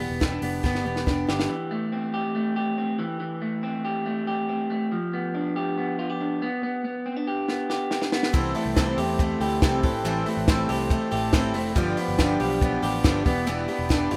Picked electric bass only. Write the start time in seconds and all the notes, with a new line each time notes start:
0.10 E1
0.42 F1
0.64 G1
0.85 E1
1.07 F1
1.28 G1
8.34 C2
8.66 C2
8.98 E2
9.41 D2
9.62 C2
9.83 A1
10.05 A1
10.37 A1
10.70 C2
11.12 A1
11.55 F1
11.76 G1
12.08 G1
12.41 B1
12.83 A1
13.05 G1
13.26 E1
13.48 E1
13.79 E1
14.12 G1